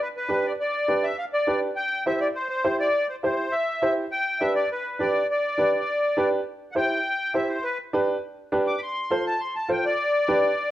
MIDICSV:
0, 0, Header, 1, 3, 480
1, 0, Start_track
1, 0, Key_signature, 0, "major"
1, 0, Tempo, 293830
1, 962, Time_signature, 4, 2, 24, 8
1, 17496, End_track
2, 0, Start_track
2, 0, Title_t, "Accordion"
2, 0, Program_c, 0, 21
2, 32, Note_on_c, 0, 71, 89
2, 133, Note_off_c, 0, 71, 0
2, 277, Note_on_c, 0, 71, 90
2, 754, Note_off_c, 0, 71, 0
2, 757, Note_on_c, 0, 74, 84
2, 857, Note_off_c, 0, 74, 0
2, 989, Note_on_c, 0, 74, 94
2, 1687, Note_on_c, 0, 76, 91
2, 1717, Note_off_c, 0, 74, 0
2, 1908, Note_off_c, 0, 76, 0
2, 1937, Note_on_c, 0, 77, 94
2, 2042, Note_off_c, 0, 77, 0
2, 2180, Note_on_c, 0, 74, 97
2, 2618, Note_off_c, 0, 74, 0
2, 2882, Note_on_c, 0, 79, 103
2, 3329, Note_off_c, 0, 79, 0
2, 3367, Note_on_c, 0, 76, 91
2, 3589, Note_off_c, 0, 76, 0
2, 3607, Note_on_c, 0, 74, 87
2, 3714, Note_off_c, 0, 74, 0
2, 3843, Note_on_c, 0, 72, 90
2, 4047, Note_off_c, 0, 72, 0
2, 4071, Note_on_c, 0, 72, 95
2, 4523, Note_off_c, 0, 72, 0
2, 4571, Note_on_c, 0, 74, 98
2, 5014, Note_off_c, 0, 74, 0
2, 5046, Note_on_c, 0, 72, 76
2, 5154, Note_off_c, 0, 72, 0
2, 5296, Note_on_c, 0, 72, 90
2, 5750, Note_on_c, 0, 76, 93
2, 5784, Note_off_c, 0, 72, 0
2, 6426, Note_off_c, 0, 76, 0
2, 6726, Note_on_c, 0, 79, 107
2, 7189, Note_on_c, 0, 76, 100
2, 7219, Note_off_c, 0, 79, 0
2, 7419, Note_off_c, 0, 76, 0
2, 7440, Note_on_c, 0, 74, 90
2, 7665, Note_off_c, 0, 74, 0
2, 7705, Note_on_c, 0, 71, 86
2, 8154, Note_on_c, 0, 74, 83
2, 8188, Note_off_c, 0, 71, 0
2, 8604, Note_off_c, 0, 74, 0
2, 8661, Note_on_c, 0, 74, 81
2, 10267, Note_off_c, 0, 74, 0
2, 10975, Note_on_c, 0, 78, 78
2, 11012, Note_off_c, 0, 78, 0
2, 11054, Note_on_c, 0, 79, 114
2, 11980, Note_off_c, 0, 79, 0
2, 11997, Note_on_c, 0, 76, 87
2, 12225, Note_on_c, 0, 72, 76
2, 12233, Note_off_c, 0, 76, 0
2, 12461, Note_on_c, 0, 71, 100
2, 12467, Note_off_c, 0, 72, 0
2, 12705, Note_off_c, 0, 71, 0
2, 14158, Note_on_c, 0, 86, 86
2, 14344, Note_on_c, 0, 83, 66
2, 14379, Note_off_c, 0, 83, 0
2, 14394, Note_off_c, 0, 86, 0
2, 14417, Note_on_c, 0, 84, 97
2, 15110, Note_off_c, 0, 84, 0
2, 15136, Note_on_c, 0, 81, 93
2, 15364, Note_off_c, 0, 81, 0
2, 15365, Note_on_c, 0, 84, 93
2, 15598, Note_off_c, 0, 84, 0
2, 15612, Note_on_c, 0, 81, 84
2, 15841, Note_off_c, 0, 81, 0
2, 15866, Note_on_c, 0, 79, 88
2, 16089, Note_off_c, 0, 79, 0
2, 16099, Note_on_c, 0, 74, 98
2, 17490, Note_off_c, 0, 74, 0
2, 17496, End_track
3, 0, Start_track
3, 0, Title_t, "Upright piano"
3, 0, Program_c, 1, 0
3, 465, Note_on_c, 1, 62, 69
3, 480, Note_on_c, 1, 67, 68
3, 486, Note_on_c, 1, 71, 80
3, 810, Note_off_c, 1, 62, 0
3, 817, Note_off_c, 1, 67, 0
3, 820, Note_off_c, 1, 71, 0
3, 1441, Note_on_c, 1, 62, 70
3, 1447, Note_on_c, 1, 67, 66
3, 1448, Note_on_c, 1, 71, 78
3, 1778, Note_off_c, 1, 62, 0
3, 1781, Note_off_c, 1, 67, 0
3, 1781, Note_off_c, 1, 71, 0
3, 2409, Note_on_c, 1, 62, 73
3, 2414, Note_on_c, 1, 67, 65
3, 2418, Note_on_c, 1, 71, 79
3, 2742, Note_off_c, 1, 62, 0
3, 2745, Note_off_c, 1, 67, 0
3, 2747, Note_off_c, 1, 71, 0
3, 3368, Note_on_c, 1, 64, 72
3, 3377, Note_on_c, 1, 67, 65
3, 3381, Note_on_c, 1, 72, 78
3, 3702, Note_off_c, 1, 64, 0
3, 3706, Note_off_c, 1, 67, 0
3, 3709, Note_off_c, 1, 72, 0
3, 4317, Note_on_c, 1, 64, 71
3, 4322, Note_on_c, 1, 67, 68
3, 4323, Note_on_c, 1, 72, 83
3, 4656, Note_off_c, 1, 64, 0
3, 4659, Note_off_c, 1, 67, 0
3, 4659, Note_off_c, 1, 72, 0
3, 5277, Note_on_c, 1, 64, 69
3, 5282, Note_on_c, 1, 67, 65
3, 5292, Note_on_c, 1, 72, 78
3, 5616, Note_off_c, 1, 64, 0
3, 5619, Note_off_c, 1, 67, 0
3, 5624, Note_off_c, 1, 72, 0
3, 6240, Note_on_c, 1, 64, 74
3, 6243, Note_on_c, 1, 67, 67
3, 6255, Note_on_c, 1, 72, 80
3, 6578, Note_off_c, 1, 64, 0
3, 6579, Note_off_c, 1, 67, 0
3, 6585, Note_off_c, 1, 72, 0
3, 7200, Note_on_c, 1, 62, 76
3, 7202, Note_on_c, 1, 67, 68
3, 7209, Note_on_c, 1, 71, 81
3, 7537, Note_off_c, 1, 62, 0
3, 7539, Note_off_c, 1, 67, 0
3, 7542, Note_off_c, 1, 71, 0
3, 8153, Note_on_c, 1, 62, 73
3, 8170, Note_on_c, 1, 71, 81
3, 8171, Note_on_c, 1, 67, 65
3, 8494, Note_off_c, 1, 62, 0
3, 8503, Note_off_c, 1, 67, 0
3, 8503, Note_off_c, 1, 71, 0
3, 9108, Note_on_c, 1, 62, 69
3, 9116, Note_on_c, 1, 67, 67
3, 9128, Note_on_c, 1, 71, 84
3, 9452, Note_off_c, 1, 62, 0
3, 9456, Note_off_c, 1, 67, 0
3, 9462, Note_off_c, 1, 71, 0
3, 10075, Note_on_c, 1, 62, 88
3, 10083, Note_on_c, 1, 67, 82
3, 10089, Note_on_c, 1, 71, 94
3, 10415, Note_off_c, 1, 62, 0
3, 10419, Note_off_c, 1, 67, 0
3, 10422, Note_off_c, 1, 71, 0
3, 11023, Note_on_c, 1, 64, 71
3, 11032, Note_on_c, 1, 67, 64
3, 11038, Note_on_c, 1, 72, 76
3, 11369, Note_off_c, 1, 64, 0
3, 11374, Note_off_c, 1, 67, 0
3, 11377, Note_off_c, 1, 72, 0
3, 11987, Note_on_c, 1, 67, 66
3, 11990, Note_on_c, 1, 64, 71
3, 12002, Note_on_c, 1, 72, 80
3, 12331, Note_off_c, 1, 67, 0
3, 12333, Note_off_c, 1, 64, 0
3, 12339, Note_off_c, 1, 72, 0
3, 12956, Note_on_c, 1, 62, 88
3, 12959, Note_on_c, 1, 67, 79
3, 12970, Note_on_c, 1, 71, 96
3, 13296, Note_off_c, 1, 62, 0
3, 13298, Note_off_c, 1, 67, 0
3, 13303, Note_off_c, 1, 71, 0
3, 13917, Note_on_c, 1, 62, 90
3, 13922, Note_on_c, 1, 67, 80
3, 13923, Note_on_c, 1, 71, 94
3, 14257, Note_off_c, 1, 62, 0
3, 14259, Note_off_c, 1, 67, 0
3, 14260, Note_off_c, 1, 71, 0
3, 14871, Note_on_c, 1, 65, 75
3, 14879, Note_on_c, 1, 69, 69
3, 14887, Note_on_c, 1, 72, 86
3, 15214, Note_off_c, 1, 65, 0
3, 15218, Note_off_c, 1, 69, 0
3, 15222, Note_off_c, 1, 72, 0
3, 15820, Note_on_c, 1, 65, 75
3, 15837, Note_on_c, 1, 69, 64
3, 15838, Note_on_c, 1, 72, 80
3, 16169, Note_off_c, 1, 65, 0
3, 16177, Note_off_c, 1, 69, 0
3, 16178, Note_off_c, 1, 72, 0
3, 16798, Note_on_c, 1, 67, 82
3, 16800, Note_on_c, 1, 62, 87
3, 16807, Note_on_c, 1, 71, 96
3, 17138, Note_off_c, 1, 67, 0
3, 17139, Note_off_c, 1, 62, 0
3, 17142, Note_off_c, 1, 71, 0
3, 17496, End_track
0, 0, End_of_file